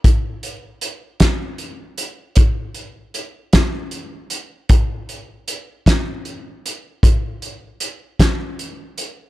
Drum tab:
HH |xxxxxx|xxxxxx|xxxxxx|xxxxxx|
SD |---o--|---o--|---o--|---o--|
BD |o--o--|o--o--|o--o--|o--o--|